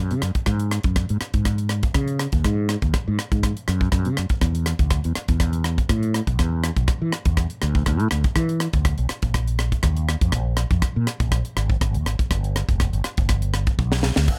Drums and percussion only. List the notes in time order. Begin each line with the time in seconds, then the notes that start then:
0.11 closed hi-hat
0.22 cross-stick, closed hi-hat
0.35 kick, closed hi-hat
0.46 kick, cross-stick, closed hi-hat
0.60 closed hi-hat
0.71 cross-stick, closed hi-hat
0.83 kick, closed hi-hat
0.96 kick, cross-stick, closed hi-hat
1.09 closed hi-hat
1.21 cross-stick, closed hi-hat
1.34 kick, closed hi-hat
1.45 kick, cross-stick, closed hi-hat
1.58 closed hi-hat
1.69 cross-stick, closed hi-hat
1.83 kick, closed hi-hat
1.94 kick, cross-stick, closed hi-hat
2.08 closed hi-hat
2.19 cross-stick, closed hi-hat
2.32 kick, closed hi-hat
2.44 kick, cross-stick, closed hi-hat
2.69 cross-stick, closed hi-hat
2.82 kick, closed hi-hat
2.94 kick, cross-stick, closed hi-hat
3.19 cross-stick, closed hi-hat
3.32 kick, closed hi-hat
3.43 kick, cross-stick, closed hi-hat
3.57 closed hi-hat
3.68 cross-stick, closed hi-hat
3.81 kick
3.92 kick, cross-stick, closed hi-hat
4.05 closed hi-hat
4.17 cross-stick, closed hi-hat
4.29 kick, closed hi-hat
4.41 kick, cross-stick, closed hi-hat
4.55 closed hi-hat
4.66 cross-stick, closed hi-hat
4.79 kick, closed hi-hat
4.91 kick, cross-stick, closed hi-hat
5.04 closed hi-hat
5.15 cross-stick, closed hi-hat
5.28 kick, closed hi-hat
5.40 kick, cross-stick, closed hi-hat
5.53 closed hi-hat
5.64 cross-stick, closed hi-hat
5.78 kick, closed hi-hat
5.89 kick, cross-stick, closed hi-hat
6.03 closed hi-hat
6.14 cross-stick, closed hi-hat
6.27 kick, closed hi-hat
6.39 kick, cross-stick, closed hi-hat
6.64 cross-stick, closed hi-hat
6.77 kick, closed hi-hat
6.88 kick, cross-stick, closed hi-hat
7.12 cross-stick, closed hi-hat
7.25 kick, closed hi-hat
7.37 kick, cross-stick, closed hi-hat
7.50 closed hi-hat
7.62 cross-stick, closed hi-hat
7.75 kick
7.86 kick, cross-stick, closed hi-hat
8.00 closed hi-hat
8.11 cross-stick, closed hi-hat
8.24 kick, closed hi-hat
8.36 kick, cross-stick, closed hi-hat
8.49 closed hi-hat
8.60 cross-stick, closed hi-hat
8.73 kick, closed hi-hat
8.85 kick, cross-stick, closed hi-hat
8.98 closed hi-hat
9.09 cross-stick, closed hi-hat
9.22 kick, closed hi-hat
9.34 kick, cross-stick, closed hi-hat
9.48 closed hi-hat
9.59 cross-stick, closed hi-hat
9.72 kick, closed hi-hat
9.83 kick, cross-stick, closed hi-hat
9.97 closed hi-hat
10.09 cross-stick, closed hi-hat
10.21 kick, closed hi-hat
10.32 kick, cross-stick, closed hi-hat
10.57 cross-stick, closed hi-hat
10.71 kick, closed hi-hat
10.82 kick, cross-stick, closed hi-hat
11.07 cross-stick, closed hi-hat
11.20 kick, closed hi-hat
11.32 kick, cross-stick, closed hi-hat
11.45 closed hi-hat
11.57 cross-stick, closed hi-hat
11.70 kick
11.81 kick, cross-stick, closed hi-hat
11.94 closed hi-hat
12.06 cross-stick, closed hi-hat
12.19 kick, closed hi-hat
12.31 kick, cross-stick, closed hi-hat
12.44 closed hi-hat
12.56 cross-stick, closed hi-hat
12.69 kick, closed hi-hat
12.80 kick, cross-stick, closed hi-hat
12.93 closed hi-hat
13.04 cross-stick, closed hi-hat
13.17 kick, closed hi-hat
13.29 kick, cross-stick, closed hi-hat
13.42 closed hi-hat
13.54 cross-stick, closed hi-hat
13.67 kick, closed hi-hat
13.79 kick
13.92 snare
14.03 snare
14.16 snare
14.28 kick, crash